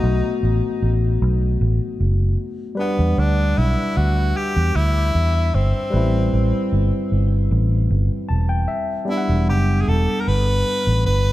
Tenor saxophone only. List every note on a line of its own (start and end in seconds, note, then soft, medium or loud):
0.00 0.38 D#4 medium
2.79 3.20 B3 medium
3.19 3.59 D4 medium
3.58 3.98 E4 medium
3.97 4.38 F#4 medium
4.37 4.77 G4 loud
4.76 5.56 E4 medium
5.55 6.72 C4 medium
9.10 9.46 E4 medium
9.49 9.83 G4 medium
9.81 9.90 G#4 medium
9.88 10.22 A4 loud
10.21 10.29 A#4 medium
10.28 11.06 B4 loud
11.06 11.32 B4 loud